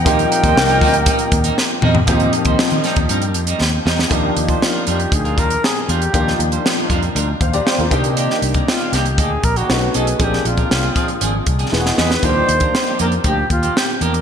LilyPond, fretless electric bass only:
\new Staff \with { instrumentName = "Fretless electric bass" } { \clef bass \time 4/4 \key ees \major \tempo 4 = 118 ees,8 r16 ees,16 c,8 d,8. r16 ees,8 r8 fes,8 | ees,8 r16 ees,16 r16 ees16 r16 ees,16 g,8 f,8 ees,8 fes,8 | ees,8 ees,8 r8 f,8 d,8 ees,8 r8 fes,8 | ees,8 ees,8 r8 f,8 d,8 ees,8 r16 ees,16 c8~ |
c8 c,8 r8 c,8 d,8 bes,,8 b,,8 b,,8 | bes,,8 bes,,8 c,8 r8 aes,,8 c,8 e,,8 e,8 | ees,8 ees,8 r8 f,8 d,8 ees,8 r8 fes,8 | }